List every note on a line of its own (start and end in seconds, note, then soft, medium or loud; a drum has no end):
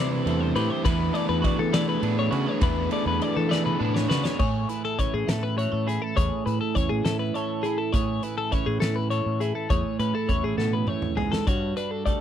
0.00 0.20 C3 medium
0.00 0.57 C3 medium
0.00 0.84 E3 medium
0.00 0.85 E3 medium
0.00 0.25 G3 medium
0.00 0.26 A3 medium
0.00 0.26 C4 medium
0.00 0.88 D4 medium
0.00 0.28 E4 medium
0.00 0.28 C5 loud
0.00 0.12 D5 medium
0.12 0.41 B4 medium
0.26 0.51 E2 medium
0.26 0.57 G3 medium
0.26 1.13 A3 medium
0.26 0.56 C4 medium
0.26 0.56 E4 medium
0.26 0.54 C5 medium
0.26 ride medium
0.41 0.55 C5 medium
0.55 0.68 A2 loud
0.55 0.84 G3 medium
0.55 0.84 C4 medium
0.55 0.86 E4 medium
0.55 0.82 G4 medium
0.55 0.70 B4 medium
0.55 0.83 C5 medium
0.55 ride medium
0.70 0.84 C5 medium
0.84 1.10 E2 medium
0.84 1.75 E3 medium
0.84 2.61 E3 medium
0.84 1.75 B3 medium
0.84 1.16 D4 loud
0.84 1.14 G#4 loud
0.84 1.14 B4 medium
0.84 1.13 B4 loud
0.84 kick loud
0.84 ride medium
1.13 1.72 A3 medium
1.13 1.73 D4 medium
1.13 1.72 G#4 medium
1.13 1.72 B4 medium
1.13 1.29 D5 medium
1.13 ride medium
1.29 1.42 E2 medium
1.29 1.44 B4 medium
1.42 1.58 F#4 medium
1.42 1.59 D5 medium
1.42 kick medium
1.42 ride medium
1.59 1.97 E3 medium
1.59 1.74 A4 medium
1.73 2.37 E3 medium
1.73 2.90 A3 medium
1.73 2.01 B3 medium
1.73 2.01 D4 medium
1.73 2.02 G#4 medium
1.73 2.04 B4 medium
1.73 1.88 D5 medium
1.73 snare loud
1.73 ride medium
1.89 2.18 B4 medium
2.02 2.28 A2 medium
2.02 2.61 B3 medium
2.02 2.33 D4 medium
2.02 2.59 D4 medium
2.02 2.31 G#4 medium
2.02 2.31 B4 medium
2.02 ride medium
2.19 2.34 C#5 medium
2.31 2.45 C#3 medium
2.31 2.61 D4 medium
2.31 2.47 F#4 medium
2.31 2.62 G#4 medium
2.31 2.62 B4 medium
2.31 2.49 B4 medium
2.31 ride medium
2.47 2.62 G#4 soft
2.47 2.63 C#5 medium
2.61 2.87 E2 medium
2.61 3.20 E3 medium
2.61 4.97 E3 medium
2.61 3.21 B3 loud
2.61 2.92 D4 loud
2.61 2.91 G#4 loud
2.61 2.92 B4 medium
2.61 2.89 B4 loud
2.61 kick loud
2.61 ride medium
2.91 3.48 A3 medium
2.91 3.50 D4 medium
2.91 3.49 G#4 medium
2.91 3.48 B4 medium
2.91 3.07 D5 medium
2.91 ride medium
3.06 3.19 E2 medium
3.06 3.22 B4 medium
3.21 3.36 D5 medium
3.21 ride medium
3.37 3.74 E3 medium
3.37 3.51 A4 medium
3.49 4.11 E3 medium
3.49 4.99 A3 medium
3.49 3.78 B3 medium
3.49 3.79 D4 medium
3.49 3.80 G#4 medium
3.49 3.81 B4 medium
3.49 3.65 D5 medium
3.49 snare medium
3.66 3.94 B4 medium
3.66 high tom medium
3.79 4.05 A2 medium
3.79 4.37 B3 medium
3.79 4.35 D4 medium
3.79 4.11 D4 medium
3.79 4.09 G#4 medium
3.79 4.08 B4 medium
3.94 4.09 C#5 medium
3.94 snare medium
4.08 4.23 C#3 medium
4.08 4.38 D4 medium
4.08 4.24 F#4 medium
4.08 4.38 G#4 medium
4.08 4.37 B4 medium
4.08 4.24 B4 medium
4.08 snare medium
4.24 4.38 G#4 medium
4.24 4.38 C#5 medium
4.24 snare medium
4.39 5.57 A2 medium
4.39 4.65 A2 medium
4.39 5.57 G#4 medium
4.39 4.69 C#5 medium
4.39 kick medium
4.39 crash medium
4.69 5.27 E4 soft
4.69 4.84 B4 medium
4.69 closed hi-hat medium
4.85 4.99 A4 medium
4.98 6.74 E3 soft
4.98 6.75 C#4 soft
4.98 5.13 C#5 medium
4.98 kick medium
4.98 closed hi-hat medium
5.14 5.26 A2 medium
5.14 5.29 G#4 medium
5.27 5.65 A2 medium
5.27 5.86 E4 medium
5.27 5.43 A4 medium
5.27 snare loud
5.27 closed hi-hat medium
5.43 5.57 B4 medium
5.57 6.15 A2 medium
5.57 5.72 F#4 soft
5.57 5.87 C#5 medium
5.57 closed hi-hat medium
5.72 5.97 A2 medium
5.72 6.16 A4 soft
5.87 6.45 E4 medium
5.87 6.02 G#4 medium
5.87 closed hi-hat medium
6.02 6.16 A4 medium
6.16 6.29 E2 medium
6.16 7.35 A2 medium
6.16 7.35 G#4 medium
6.16 6.46 C#5 medium
6.16 kick medium
6.16 closed hi-hat medium
6.46 6.59 A2 medium
6.46 7.05 E4 medium
6.46 6.60 B4 medium
6.46 closed hi-hat medium
6.61 6.75 A4 medium
6.75 6.88 E2 medium
6.75 8.51 E3 medium
6.75 8.51 C#4 soft
6.75 6.90 C#5 medium
6.75 kick medium
6.75 closed hi-hat soft
6.90 7.03 A2 medium
6.90 7.04 G#4 medium
7.05 7.30 A2 medium
7.05 7.65 E4 medium
7.05 7.19 A4 medium
7.05 snare loud
7.05 closed hi-hat medium
7.19 7.34 B4 medium
7.34 7.93 A2 medium
7.34 7.94 A4 soft
7.34 7.64 C#5 medium
7.34 closed hi-hat medium
7.63 8.23 E4 medium
7.63 7.78 G#4 medium
7.63 closed hi-hat soft
7.78 7.93 A4 medium
7.93 9.09 A2 medium
7.93 8.19 A2 medium
7.93 9.11 G#4 medium
7.93 8.23 C#5 medium
7.93 kick medium
7.93 closed hi-hat medium
8.23 8.81 E4 soft
8.23 8.37 B4 medium
8.23 closed hi-hat medium
8.38 8.52 A4 medium
8.51 10.27 E3 medium
8.51 9.66 C#4 soft
8.51 8.67 C#5 medium
8.51 kick medium
8.51 closed hi-hat soft
8.66 8.79 A2 medium
8.66 8.80 G#4 medium
8.80 9.20 A2 medium
8.80 9.40 E4 medium
8.80 8.96 A4 medium
8.80 snare loud
8.80 closed hi-hat medium
8.96 9.10 B4 medium
9.10 9.66 A2 medium
9.10 9.70 A4 soft
9.10 9.40 C#5 medium
9.10 closed hi-hat medium
9.26 9.51 A2 medium
9.40 9.67 E4 medium
9.40 9.55 G#4 medium
9.40 closed hi-hat medium
9.55 9.70 A4 medium
9.70 9.83 E2 medium
9.70 10.85 A2 medium
9.70 11.44 G#4 medium
9.70 9.99 C#5 medium
9.70 kick medium
9.70 closed hi-hat medium
9.99 10.12 A2 medium
9.99 10.15 C#4 soft
9.99 10.14 B4 medium
9.99 closed hi-hat medium
10.15 11.47 E4 soft
10.15 10.29 A4 medium
10.28 10.42 E2 medium
10.28 11.47 E3 medium
10.28 11.44 C#4 medium
10.28 10.44 C#5 medium
10.28 kick medium
10.28 closed hi-hat medium
10.43 10.56 A2 medium
10.43 10.57 G#4 medium
10.57 10.83 A2 medium
10.57 10.88 B2 medium
10.57 10.73 A4 medium
10.57 snare soft
10.73 10.88 B4 medium
10.87 11.16 A2 soft
10.87 11.18 C#5 medium
10.87 mid tom medium
11.02 mid tom medium
11.16 11.46 G#2 medium
11.16 11.32 G#4 medium
11.16 floor tom medium
11.32 11.47 A4 medium
11.32 snare medium
11.47 12.21 G2 medium
11.47 11.72 G2 medium
11.47 12.21 F#4 medium
11.47 11.76 C#5 medium
11.47 kick medium
11.47 closed hi-hat medium
11.77 12.21 D4 soft
11.77 11.91 B4 medium
11.77 closed hi-hat medium
11.91 12.05 A4 medium
12.06 12.21 G3 medium
12.06 12.21 A3 medium
12.06 12.21 D5 medium
12.06 kick medium
12.06 closed hi-hat soft